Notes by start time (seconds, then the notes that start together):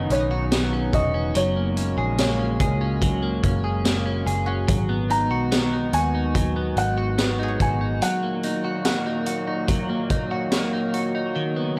Already playing: C#3 D#3 F#3 B3 D#4 F#4 D#5
0.10 B1 C#4 C#5, closed hi-hat
0.15 B4
0.20 D#5
0.31 F#4
0.52 B3, snare, closed hi-hat, tambourine
0.73 C#4
0.93 E1 F#4 D#5, kick, closed hi-hat
1.14 C#4
1.35 F#1 A#2 C#3 F#3 G#3 F#4 C#5, closed hi-hat
1.56 A#3
1.77 C#4, closed hi-hat
1.98 A#1 G#4
2.18 A#3 C#5, snare, closed hi-hat, tambourine
2.39 C#4
2.60 C#2 G#4, kick, closed hi-hat
2.81 C#4
3.02 F#3, kick, closed hi-hat
3.23 A#3
3.43 F#1 C#4, kick, closed hi-hat
3.64 G#4
3.85 A#3, snare, closed hi-hat, tambourine
4.06 C#4
4.26 F#1 G#4, closed hi-hat
4.46 C#4 F#4
4.68 G#1 D#3 F#3 G#3 B3, kick, closed hi-hat
4.89 B3
5.10 D#4 A#5, closed hi-hat
5.31 B1 F#4
5.52 B3, snare, closed hi-hat, tambourine
5.73 D#4
5.93 D#2 F#4 G#5, closed hi-hat
6.15 D#4
6.35 F#3, kick, closed hi-hat
6.56 B3
6.77 G#1 D#4 F#5, closed hi-hat
6.98 F#4
7.18 B3, snare, closed hi-hat, tambourine
7.39 D#4 G#4
7.48 C#5
7.60 G#1 F#4 G#5, kick, closed hi-hat
7.81 D#4
8.01 A#2 D#3 F#3 A#3 F#5, closed hi-hat
8.23 A#3
8.43 D#4, closed hi-hat
8.64 F#4
8.85 A#3 F#5, snare, closed hi-hat, tambourine
9.06 D#4
9.26 F#4, closed hi-hat
9.47 D#4
9.68 F#3, kick, closed hi-hat
9.89 A#3
10.10 D#4, kick, closed hi-hat
10.31 F#4
10.52 A#3, snare, closed hi-hat, tambourine
10.73 D#4
10.94 F#4, closed hi-hat
11.15 D#4
11.35 C#3 D#3 B3 D#4
11.56 B3